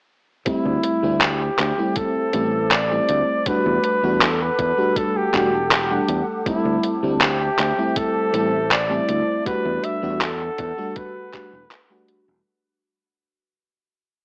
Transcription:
0.45 G3 A3 C4 E4 C5 E5 A5 D6, muted fingered electric bass stroke, kick, closed hi-hat
0.66 D2
0.84 closed hi-hat
1.02 D2 G3 A3 C4 E4
1.21 G4, clap, closed hi-hat
1.59 D2, clap, closed hi-hat
1.77 G3 A3 C4 E4
1.96 A4, kick, closed hi-hat
2.33 A1 G3 A3 C4 E4, closed hi-hat
2.71 D5, clap, closed hi-hat
2.91 G3 A3 C4 E4
3.09 D2, closed hi-hat
3.46 G3 A3 D4 F#4 A4 B4 F#5, muted fingered electric bass stroke, kick, closed hi-hat
3.66 E2
3.84 closed hi-hat
4.02 E2 G3 A3 D4 F#4
4.21 A4, clap, closed hi-hat
4.42 B4
4.59 E2, kick, closed hi-hat
4.77 G3 A3 D4 F#4
4.96 A4, kick, closed hi-hat
5.16 G4
5.33 E1 G3 A3 D4 F#4, kick, clap, closed hi-hat
5.71 G4, clap, closed hi-hat
5.90 G3 A3 D4 F#5
6.08 E2, closed hi-hat
6.46 G3 A3 C4 E4 C5 E5, muted fingered electric bass stroke, kick, closed hi-hat
6.65 D2
6.83 closed hi-hat
7.03 D2 G3 A3 C4 E4
7.21 G4, clap, closed hi-hat
7.59 D2, clap, closed hi-hat
7.77 G3 A3 C4 E4
7.96 A4, kick, closed hi-hat
8.32 A1 G3 A3 C4 E4, closed hi-hat
8.71 D5, clap, closed hi-hat
8.89 G3 A3 C4 E4
9.09 D2, closed hi-hat
9.45 G3 A3 D4 F#4 A4 B4 F#5, muted fingered electric bass stroke, kick, closed hi-hat
9.65 E2
9.84 E5, closed hi-hat
10.02 E2 G3 A3 D4 F#4
10.21 A4, clap, closed hi-hat
10.58 E2, kick, closed hi-hat
10.77 G3 A3 D4 F#4
10.96 B4, kick, closed hi-hat
11.33 G3 A3 D4 F#4, kick, clap, closed hi-hat
11.53 E1
11.71 clap, closed hi-hat
11.90 G3 A3 D4 F#4
12.08 closed hi-hat
12.28 E1

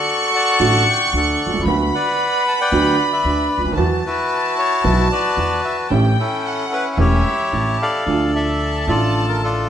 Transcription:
Already playing: F#4 A4 D5 C#6
0.35 D5 F#5 A5
0.60 A1 A2 D3 F#3 A3 F#4
0.90 G5
1.13 D2 D3 A4 D5 F#5
1.46 B1
1.52 C2
1.59 C#2
1.65 D2 D3 F#3 B3 F#4 B5
1.95 B4 D5 F#5
2.48 A5
2.61 B4 D5 G5
2.72 D2 D3 F#3 B3 F#4
2.99 F#5
3.13 B4 E5
3.24 D2 D3
3.58 C#2
3.64 D2
3.71 D#2
3.77 E2 E3 F#3 B3 F#4 A5
4.06 E4 F#4 B4
4.59 C#5
4.84 B1 B2 E3 F#3 B3 F#4
5.12 F#4 B4 D5
5.37 E2 E3
5.65 E5
5.90 A1 A2 E3 A3 C#4 G4 G5
6.20 C#4 E4 A4
6.46 F#5
6.73 B4
6.91 F#5
6.97 E1 E2 E3 A3 C#4 E4 G4 C#5 E5
7.52 A1 A2 A5
7.82 A4 D5 F5
8.06 D2 D3 F3 A3 F4 A5
8.35 A4 E5
8.87 A1 A2 D3 F3 A3 F4 A4 D5
9.28 A#4
9.43 D4 F4 A4

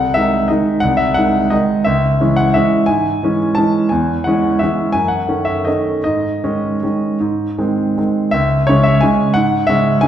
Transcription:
Already playing: C2 F#5
0.14 D#3 G#3 D#4 E5
0.48 D#3 G#3 D#4 D#5
0.80 C2 F#5
0.97 E5
1.14 D#3 G#3 D#4 F#5
1.50 D#3 G#3 D#4 D#5
1.84 C#2 E5
2.21 E3 G#3 C#4
2.36 F#5
2.54 E3 G#3 C#4 E5
2.86 G#2 G#5
3.23 E3 G#3 C#4
3.55 E3 G#3 C#4 A5
3.89 E2 G#5
4.24 E3 G#3 C#4 F#5
4.59 E3 G#3 C#4 E5
4.92 F#2 G#5
5.08 F#5
5.29 D#3 A3 C#4
5.45 E5
5.65 D#3 A3 C#4 D#5
6.04 G#2 D#5
6.44 D#3 G#3 C#4
6.83 D#3 G#3 C#4
7.20 G#2
7.58 D#3 G#3 C4
7.98 D#3 G#3 C4
8.31 C#2 E5
8.67 C#3 G#3 C#4 C#5
8.83 E5
9.01 C#3 G#3 C#4 G#5
9.34 G#2 F#5
9.67 C#3 G#3 C#4 E5
10.01 C#3 G#3 C#4 G#5

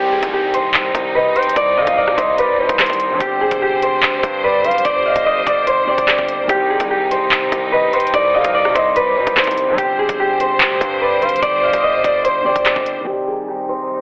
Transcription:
Already playing: C2 C3 D#3 G3 C4 D#4 G4 C5 D5 F5, downlifter
0.12 G#4
0.23 C2, kick, closed hi-hat
0.33 G4
0.54 C5, closed hi-hat
0.74 clap
0.95 C2, kick, closed hi-hat
1.15 B4 D#5
1.36 C5 G5, closed hi-hat
1.43 closed hi-hat
1.49 closed hi-hat
1.56 C2 D5, kick, closed hi-hat
1.76 D#3 D#5 F5
1.87 C2, kick, closed hi-hat
1.97 D5
2.08 C3, cross-stick
2.17 C2 C5 D#5, kick, closed hi-hat
2.38 B4 D5, closed hi-hat
2.59 C3 C5
2.69 C2, kick, closed hi-hat
2.77 D#3 G3 C4 C5, cross-stick, clap, closed hi-hat
2.82 D#4, closed hi-hat
2.90 C2, kick, closed hi-hat
3.00 closed hi-hat
3.10 G3
3.15 D3 G3
3.20 G1 D3 C4 G4 C5, kick, closed hi-hat
3.27 G4
3.41 G#4
3.51 G1, kick, closed hi-hat
3.62 G4
3.82 C5, closed hi-hat
4.03 D2, clap
4.23 G2, kick, closed hi-hat
4.44 B4 D5
4.64 G#1 C5 F5, closed hi-hat
4.71 closed hi-hat
4.78 closed hi-hat
4.85 G1 D5, kick, closed hi-hat
5.05 D#5 F5
5.16 G1, kick, closed hi-hat
5.26 D#5
5.47 G1 D5, kick, closed hi-hat
5.67 C5, closed hi-hat
5.85 D3 G3 C4 D5
5.91 G4
5.98 G1, kick, closed hi-hat
6.08 cross-stick, clap, closed hi-hat
6.18 G1, kick
6.28 closed hi-hat
6.39 F1
6.44 D#3
6.48 C2 C3 G3 C4 D#4 G4, kick, closed hi-hat
6.55 G4
6.70 G#4
6.80 C2, kick, closed hi-hat
6.91 G4
7.11 C5, closed hi-hat
7.32 clap
7.52 C2, kick, closed hi-hat
7.72 B4 D#5
7.93 C5 G5, closed hi-hat
8.00 closed hi-hat
8.07 closed hi-hat
8.14 C2 D5, kick, closed hi-hat
8.34 D#3 D#5 F5
8.44 C2, kick, closed hi-hat
8.54 D5
8.65 C3, cross-stick
8.75 C2 C5 D#5, kick, closed hi-hat
8.96 B4 D5, closed hi-hat
9.16 C3 C5
9.27 C2, kick, closed hi-hat
9.34 D#3 G3 C5, cross-stick, clap, closed hi-hat
9.38 C4 D#4
9.44 C2, kick, closed hi-hat
9.51 closed hi-hat
9.58 closed hi-hat
9.68 G3
9.73 D3 G3
9.78 G1 D3 G3 C4 G4 C5, kick, closed hi-hat
9.84 G4
9.99 G#4
10.09 G1, kick, closed hi-hat
10.20 G4
10.40 C5, closed hi-hat
10.60 D2, clap
10.81 G2, kick, closed hi-hat
11.01 B4 D5
11.22 G#1 C5 F5, closed hi-hat
11.29 closed hi-hat
11.36 closed hi-hat
11.42 G1 D5, kick, closed hi-hat
11.63 D#5 F5
11.73 G1, kick, closed hi-hat
11.83 D#5
12.04 G1 D5, kick, closed hi-hat
12.24 C5, closed hi-hat
12.42 D3 G3 C4 D5
12.48 G4
12.56 G1, kick, closed hi-hat
12.66 cross-stick, clap, closed hi-hat
12.76 G1, kick
12.86 closed hi-hat
12.97 F1
13.01 D#3 G3
13.07 C3 G3 C4 D#4 G4
13.13 G4
13.27 G#4
13.48 G4
13.69 C5

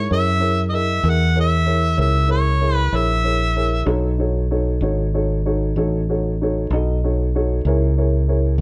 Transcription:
0.09 F#2 E4 G#4 A#4 C#5 E5
0.39 E4 G#4 A#4 C#5
0.69 E4 G#4 A#4 D#5
0.75 E5
1.03 E2 E4 G#4 A#4 E5
1.10 F#5
1.35 E4 G#4 A#4 C#5
1.41 E5
1.66 E4 G#4 A#4 C#5
1.96 C#2 E4 G#4 A#4 C#5
2.01 E5
2.27 E4 G#4 A#4 C#5
2.31 C#5
2.61 E4 G#4 A#4 C#5
2.75 B4
2.92 A#1 E4 G#4 A#4 C#5
2.96 E5
3.23 E4 G#4 A#4 C#5
3.55 E4 G#4 A#4 C#5
3.86 B1 D#4 F#4 A4 C#5
4.18 D#4 F#4 A4 C#5
4.51 D#4 F#4 A4 C#5
4.81 G#1 D#4 F#4 A4 C#5
5.14 D#4 F#4 A4 C#5
5.45 D#4 F#4 A4 C#5
5.76 A1 D#4 F#4 A4 C#5
6.09 D#4 F#4 A4 C#5
6.41 D#4 F#4 A4 C#5
6.70 B1 D#4 F#4 A4 D#5
7.04 D#4 F#4 A4 C#5
7.35 D#4 F#4 A4 C#5
7.65 C#2 E4 G#4 A#4 C#5
7.97 E4 G#4 A#4 C#5
8.28 E4 G#4 A#4 C#5
8.58 D#2

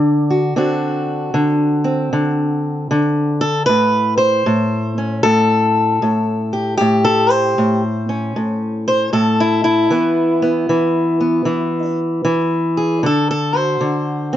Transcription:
Already playing: D3 D4 D5
0.30 F#4
0.56 D3 C4 D4 F#4
1.34 D3
1.84 C4
2.13 D3
2.91 D3
3.41 A4
3.66 A2 B4
4.18 C5
4.46 A2
4.98 C#4
5.23 A2 A4
6.02 A2
6.53 G4
6.77 A2 G4
7.05 A4
7.30 C5
7.58 A2
8.09 C#4
8.36 A2
8.88 C5
9.13 A2 A4
9.40 E4
9.64 E4
9.90 E3 B3
10.42 B3
10.69 E3
11.21 B3
11.45 E3
12.25 E3
12.77 G#4
13.03 D3 A4
13.31 A4
13.53 F#4 C5
13.81 D3
14.33 C4

